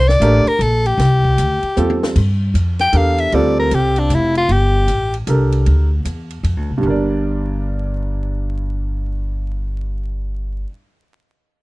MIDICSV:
0, 0, Header, 1, 6, 480
1, 0, Start_track
1, 0, Tempo, 389864
1, 1209, Time_signature, 3, 2, 24, 8
1, 14313, End_track
2, 0, Start_track
2, 0, Title_t, "Soprano saxophone"
2, 0, Program_c, 0, 64
2, 102, Note_on_c, 0, 74, 97
2, 592, Note_on_c, 0, 70, 85
2, 611, Note_off_c, 0, 74, 0
2, 763, Note_on_c, 0, 69, 76
2, 781, Note_off_c, 0, 70, 0
2, 1066, Note_on_c, 0, 67, 76
2, 1084, Note_off_c, 0, 69, 0
2, 2491, Note_off_c, 0, 67, 0
2, 3461, Note_on_c, 0, 79, 90
2, 3657, Note_on_c, 0, 77, 76
2, 3675, Note_off_c, 0, 79, 0
2, 3941, Note_on_c, 0, 76, 86
2, 3959, Note_off_c, 0, 77, 0
2, 4120, Note_on_c, 0, 74, 85
2, 4138, Note_off_c, 0, 76, 0
2, 4412, Note_off_c, 0, 74, 0
2, 4428, Note_on_c, 0, 70, 80
2, 4610, Note_on_c, 0, 67, 69
2, 4628, Note_off_c, 0, 70, 0
2, 4914, Note_on_c, 0, 62, 63
2, 4932, Note_off_c, 0, 67, 0
2, 5104, Note_on_c, 0, 64, 67
2, 5122, Note_off_c, 0, 62, 0
2, 5378, Note_off_c, 0, 64, 0
2, 5386, Note_on_c, 0, 65, 85
2, 5572, Note_on_c, 0, 67, 77
2, 5591, Note_off_c, 0, 65, 0
2, 6338, Note_off_c, 0, 67, 0
2, 14313, End_track
3, 0, Start_track
3, 0, Title_t, "Grand piano"
3, 0, Program_c, 1, 0
3, 260, Note_on_c, 1, 57, 65
3, 267, Note_on_c, 1, 62, 65
3, 271, Note_on_c, 1, 70, 78
3, 272, Note_on_c, 1, 67, 63
3, 533, Note_off_c, 1, 57, 0
3, 536, Note_off_c, 1, 62, 0
3, 539, Note_off_c, 1, 67, 0
3, 539, Note_off_c, 1, 70, 0
3, 2170, Note_on_c, 1, 55, 53
3, 2179, Note_on_c, 1, 60, 48
3, 2190, Note_on_c, 1, 65, 51
3, 2190, Note_on_c, 1, 69, 67
3, 2649, Note_off_c, 1, 55, 0
3, 2653, Note_off_c, 1, 60, 0
3, 2659, Note_off_c, 1, 65, 0
3, 2659, Note_off_c, 1, 69, 0
3, 3602, Note_on_c, 1, 69, 56
3, 3603, Note_on_c, 1, 62, 53
3, 3613, Note_on_c, 1, 67, 56
3, 3621, Note_on_c, 1, 70, 60
3, 4097, Note_off_c, 1, 69, 0
3, 4104, Note_on_c, 1, 55, 68
3, 4112, Note_on_c, 1, 60, 58
3, 4116, Note_on_c, 1, 69, 76
3, 4119, Note_on_c, 1, 65, 59
3, 4332, Note_off_c, 1, 62, 0
3, 4337, Note_off_c, 1, 67, 0
3, 4341, Note_off_c, 1, 70, 0
3, 5432, Note_off_c, 1, 55, 0
3, 5436, Note_off_c, 1, 60, 0
3, 5438, Note_off_c, 1, 69, 0
3, 5440, Note_off_c, 1, 65, 0
3, 6499, Note_on_c, 1, 69, 54
3, 6511, Note_on_c, 1, 62, 44
3, 6512, Note_on_c, 1, 67, 47
3, 6520, Note_on_c, 1, 70, 61
3, 7220, Note_off_c, 1, 69, 0
3, 7226, Note_off_c, 1, 62, 0
3, 7226, Note_off_c, 1, 67, 0
3, 7230, Note_off_c, 1, 70, 0
3, 8341, Note_on_c, 1, 43, 65
3, 8379, Note_on_c, 1, 55, 52
3, 8415, Note_on_c, 1, 62, 54
3, 8453, Note_on_c, 1, 70, 53
3, 8496, Note_on_c, 1, 74, 64
3, 13101, Note_off_c, 1, 43, 0
3, 13120, Note_off_c, 1, 55, 0
3, 13138, Note_off_c, 1, 62, 0
3, 13156, Note_off_c, 1, 70, 0
3, 13178, Note_off_c, 1, 74, 0
3, 14313, End_track
4, 0, Start_track
4, 0, Title_t, "Upright bass"
4, 0, Program_c, 2, 32
4, 0, Note_on_c, 2, 36, 93
4, 234, Note_off_c, 2, 36, 0
4, 246, Note_on_c, 2, 33, 89
4, 535, Note_off_c, 2, 33, 0
4, 727, Note_on_c, 2, 34, 90
4, 1194, Note_off_c, 2, 34, 0
4, 1202, Note_on_c, 2, 36, 92
4, 1671, Note_off_c, 2, 36, 0
4, 1696, Note_on_c, 2, 38, 80
4, 1980, Note_off_c, 2, 38, 0
4, 2176, Note_on_c, 2, 40, 76
4, 2637, Note_off_c, 2, 40, 0
4, 2657, Note_on_c, 2, 43, 84
4, 3118, Note_off_c, 2, 43, 0
4, 3126, Note_on_c, 2, 41, 82
4, 3592, Note_off_c, 2, 41, 0
4, 3604, Note_on_c, 2, 40, 91
4, 4071, Note_off_c, 2, 40, 0
4, 4093, Note_on_c, 2, 38, 90
4, 4555, Note_off_c, 2, 38, 0
4, 4569, Note_on_c, 2, 36, 78
4, 5033, Note_off_c, 2, 36, 0
4, 5041, Note_on_c, 2, 29, 82
4, 5509, Note_off_c, 2, 29, 0
4, 5525, Note_on_c, 2, 31, 92
4, 5991, Note_off_c, 2, 31, 0
4, 5998, Note_on_c, 2, 33, 73
4, 6467, Note_off_c, 2, 33, 0
4, 6488, Note_on_c, 2, 36, 81
4, 6952, Note_off_c, 2, 36, 0
4, 6971, Note_on_c, 2, 38, 88
4, 7434, Note_off_c, 2, 38, 0
4, 7446, Note_on_c, 2, 40, 76
4, 7911, Note_off_c, 2, 40, 0
4, 7922, Note_on_c, 2, 41, 80
4, 8084, Note_off_c, 2, 41, 0
4, 8084, Note_on_c, 2, 38, 56
4, 8244, Note_off_c, 2, 38, 0
4, 8252, Note_on_c, 2, 36, 55
4, 8398, Note_off_c, 2, 36, 0
4, 8407, Note_on_c, 2, 31, 89
4, 13084, Note_off_c, 2, 31, 0
4, 14313, End_track
5, 0, Start_track
5, 0, Title_t, "Muted upright bass strokes"
5, 560, Note_on_c, 9, 29, 40
5, 683, Note_off_c, 9, 29, 0
5, 1998, Note_on_c, 9, 29, 37
5, 2121, Note_off_c, 9, 29, 0
5, 14313, End_track
6, 0, Start_track
6, 0, Title_t, "Drums"
6, 110, Note_on_c, 9, 38, 42
6, 233, Note_off_c, 9, 38, 0
6, 264, Note_on_c, 9, 44, 56
6, 264, Note_on_c, 9, 51, 70
6, 387, Note_off_c, 9, 44, 0
6, 387, Note_off_c, 9, 51, 0
6, 579, Note_on_c, 9, 51, 43
6, 702, Note_off_c, 9, 51, 0
6, 748, Note_on_c, 9, 44, 50
6, 748, Note_on_c, 9, 51, 63
6, 871, Note_off_c, 9, 44, 0
6, 871, Note_off_c, 9, 51, 0
6, 1055, Note_on_c, 9, 51, 47
6, 1178, Note_off_c, 9, 51, 0
6, 1224, Note_on_c, 9, 51, 60
6, 1229, Note_on_c, 9, 38, 39
6, 1347, Note_off_c, 9, 51, 0
6, 1352, Note_off_c, 9, 38, 0
6, 1531, Note_on_c, 9, 36, 48
6, 1654, Note_off_c, 9, 36, 0
6, 1698, Note_on_c, 9, 44, 60
6, 1698, Note_on_c, 9, 51, 69
6, 1821, Note_off_c, 9, 44, 0
6, 1821, Note_off_c, 9, 51, 0
6, 2001, Note_on_c, 9, 51, 38
6, 2124, Note_off_c, 9, 51, 0
6, 2174, Note_on_c, 9, 44, 55
6, 2179, Note_on_c, 9, 48, 41
6, 2297, Note_off_c, 9, 44, 0
6, 2302, Note_off_c, 9, 48, 0
6, 2335, Note_on_c, 9, 48, 57
6, 2458, Note_off_c, 9, 48, 0
6, 2502, Note_on_c, 9, 38, 78
6, 2626, Note_off_c, 9, 38, 0
6, 2657, Note_on_c, 9, 36, 78
6, 2658, Note_on_c, 9, 49, 71
6, 2780, Note_off_c, 9, 36, 0
6, 2781, Note_off_c, 9, 49, 0
6, 3138, Note_on_c, 9, 44, 53
6, 3138, Note_on_c, 9, 51, 61
6, 3261, Note_off_c, 9, 44, 0
6, 3261, Note_off_c, 9, 51, 0
6, 3438, Note_on_c, 9, 51, 46
6, 3442, Note_on_c, 9, 38, 31
6, 3561, Note_off_c, 9, 51, 0
6, 3566, Note_off_c, 9, 38, 0
6, 3604, Note_on_c, 9, 44, 51
6, 3604, Note_on_c, 9, 51, 70
6, 3727, Note_off_c, 9, 44, 0
6, 3727, Note_off_c, 9, 51, 0
6, 3917, Note_on_c, 9, 51, 43
6, 4041, Note_off_c, 9, 51, 0
6, 4089, Note_on_c, 9, 51, 57
6, 4213, Note_off_c, 9, 51, 0
6, 4569, Note_on_c, 9, 44, 47
6, 4569, Note_on_c, 9, 51, 65
6, 4692, Note_off_c, 9, 44, 0
6, 4692, Note_off_c, 9, 51, 0
6, 4875, Note_on_c, 9, 51, 45
6, 4998, Note_off_c, 9, 51, 0
6, 5048, Note_on_c, 9, 44, 57
6, 5048, Note_on_c, 9, 51, 57
6, 5171, Note_off_c, 9, 44, 0
6, 5171, Note_off_c, 9, 51, 0
6, 5358, Note_on_c, 9, 51, 43
6, 5481, Note_off_c, 9, 51, 0
6, 5528, Note_on_c, 9, 51, 54
6, 5651, Note_off_c, 9, 51, 0
6, 6005, Note_on_c, 9, 44, 46
6, 6005, Note_on_c, 9, 51, 54
6, 6129, Note_off_c, 9, 44, 0
6, 6129, Note_off_c, 9, 51, 0
6, 6322, Note_on_c, 9, 51, 41
6, 6446, Note_off_c, 9, 51, 0
6, 6487, Note_on_c, 9, 44, 47
6, 6487, Note_on_c, 9, 51, 59
6, 6610, Note_off_c, 9, 44, 0
6, 6610, Note_off_c, 9, 51, 0
6, 6799, Note_on_c, 9, 51, 44
6, 6922, Note_off_c, 9, 51, 0
6, 6970, Note_on_c, 9, 51, 51
6, 7093, Note_off_c, 9, 51, 0
6, 7453, Note_on_c, 9, 44, 49
6, 7453, Note_on_c, 9, 51, 63
6, 7576, Note_off_c, 9, 44, 0
6, 7576, Note_off_c, 9, 51, 0
6, 7762, Note_on_c, 9, 51, 40
6, 7885, Note_off_c, 9, 51, 0
6, 7933, Note_on_c, 9, 51, 52
6, 8056, Note_off_c, 9, 51, 0
6, 14313, End_track
0, 0, End_of_file